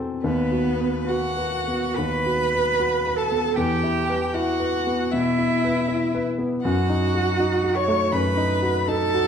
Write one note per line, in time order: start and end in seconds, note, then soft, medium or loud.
0.00 0.19 E2 soft
0.00 0.26 C4 medium
0.00 0.25 F#4 soft
0.00 0.26 A4 medium
0.23 1.93 D#2 medium
0.23 1.05 B3 medium
0.23 1.09 B4 medium
0.52 0.98 F#4 medium
0.81 1.27 B4 medium
1.07 1.96 F#4 medium
1.07 1.56 F#4 medium
1.07 1.97 F#5 medium
1.37 1.85 B4 soft
1.68 2.14 B3 soft
1.95 3.53 D#2 medium
1.95 3.17 B4 loud
1.95 3.19 B5 medium
2.26 2.69 F#4 medium
2.55 2.96 B4 medium
2.80 3.21 F#4 soft
3.07 3.47 B4 medium
3.16 3.57 A4 medium
3.16 3.55 A5 medium
3.32 3.57 B3 soft
3.55 5.09 E2 medium
3.55 4.35 G4 medium
3.55 4.36 G5 medium
3.83 4.24 E4 medium
4.10 4.51 B4 medium
4.33 4.76 E4 medium
4.33 5.12 F#4 medium
4.33 5.13 F#5 medium
4.60 5.02 B4 medium
4.87 5.28 B3 medium
5.11 5.54 B2 soft
5.11 6.24 E4 loud
5.11 6.26 E5 medium
5.39 5.79 E4 medium
5.65 6.05 B4 medium
5.88 6.29 E4 medium
6.15 6.54 B4 medium
6.38 6.64 B3 medium
6.62 8.09 F#2 medium
6.62 7.77 F#4 loud
6.62 7.77 F#5 medium
6.89 7.29 D#4 medium
7.15 7.54 F#4 medium
7.39 7.78 D#4 medium
7.64 8.03 F#4 medium
7.75 8.14 C#5 medium
7.75 8.13 C#6 medium
7.88 8.28 A3 medium
8.12 9.27 F#2 medium
8.12 8.88 B4 medium
8.12 8.89 B5 medium
8.37 8.78 D#4 medium
8.62 9.03 F#4 medium
8.87 9.27 D#4 medium
8.87 9.27 A4 loud
8.87 9.27 A5 medium
9.14 9.27 F#4 medium